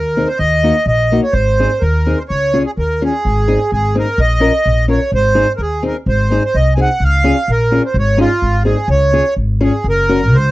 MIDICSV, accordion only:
0, 0, Header, 1, 2, 480
1, 0, Start_track
1, 0, Key_signature, -5, "major"
1, 0, Tempo, 471328
1, 411, Time_signature, 2, 2, 24, 8
1, 9051, Tempo, 480384
1, 10675, End_track
2, 0, Start_track
2, 0, Title_t, "Accordion"
2, 0, Program_c, 0, 21
2, 0, Note_on_c, 0, 70, 70
2, 274, Note_on_c, 0, 72, 74
2, 286, Note_off_c, 0, 70, 0
2, 393, Note_off_c, 0, 72, 0
2, 395, Note_on_c, 0, 75, 100
2, 874, Note_off_c, 0, 75, 0
2, 890, Note_on_c, 0, 75, 89
2, 1229, Note_off_c, 0, 75, 0
2, 1253, Note_on_c, 0, 73, 59
2, 1347, Note_on_c, 0, 72, 100
2, 1364, Note_off_c, 0, 73, 0
2, 1838, Note_on_c, 0, 70, 67
2, 1860, Note_off_c, 0, 72, 0
2, 2211, Note_on_c, 0, 72, 63
2, 2227, Note_off_c, 0, 70, 0
2, 2268, Note_off_c, 0, 72, 0
2, 2328, Note_on_c, 0, 73, 98
2, 2674, Note_off_c, 0, 73, 0
2, 2709, Note_on_c, 0, 68, 78
2, 2762, Note_off_c, 0, 68, 0
2, 2837, Note_on_c, 0, 70, 69
2, 3085, Note_off_c, 0, 70, 0
2, 3099, Note_on_c, 0, 68, 77
2, 3778, Note_off_c, 0, 68, 0
2, 3793, Note_on_c, 0, 68, 84
2, 4036, Note_off_c, 0, 68, 0
2, 4061, Note_on_c, 0, 70, 75
2, 4280, Note_off_c, 0, 70, 0
2, 4282, Note_on_c, 0, 75, 105
2, 4948, Note_off_c, 0, 75, 0
2, 4989, Note_on_c, 0, 73, 77
2, 5203, Note_off_c, 0, 73, 0
2, 5247, Note_on_c, 0, 72, 110
2, 5628, Note_off_c, 0, 72, 0
2, 5670, Note_on_c, 0, 70, 64
2, 5714, Note_off_c, 0, 70, 0
2, 5722, Note_on_c, 0, 68, 87
2, 5942, Note_off_c, 0, 68, 0
2, 5975, Note_on_c, 0, 70, 63
2, 6077, Note_off_c, 0, 70, 0
2, 6191, Note_on_c, 0, 72, 84
2, 6552, Note_off_c, 0, 72, 0
2, 6567, Note_on_c, 0, 72, 78
2, 6675, Note_on_c, 0, 75, 96
2, 6682, Note_off_c, 0, 72, 0
2, 6862, Note_off_c, 0, 75, 0
2, 6870, Note_on_c, 0, 80, 56
2, 6923, Note_off_c, 0, 80, 0
2, 6938, Note_on_c, 0, 78, 85
2, 7168, Note_off_c, 0, 78, 0
2, 7170, Note_on_c, 0, 77, 102
2, 7649, Note_off_c, 0, 77, 0
2, 7649, Note_on_c, 0, 70, 83
2, 7970, Note_off_c, 0, 70, 0
2, 8001, Note_on_c, 0, 72, 68
2, 8111, Note_off_c, 0, 72, 0
2, 8133, Note_on_c, 0, 73, 93
2, 8341, Note_off_c, 0, 73, 0
2, 8356, Note_on_c, 0, 65, 98
2, 8791, Note_off_c, 0, 65, 0
2, 8810, Note_on_c, 0, 68, 69
2, 9055, Note_off_c, 0, 68, 0
2, 9066, Note_on_c, 0, 73, 100
2, 9504, Note_off_c, 0, 73, 0
2, 9794, Note_on_c, 0, 68, 64
2, 10028, Note_off_c, 0, 68, 0
2, 10057, Note_on_c, 0, 70, 95
2, 10512, Note_on_c, 0, 72, 95
2, 10527, Note_off_c, 0, 70, 0
2, 10675, Note_off_c, 0, 72, 0
2, 10675, End_track
0, 0, End_of_file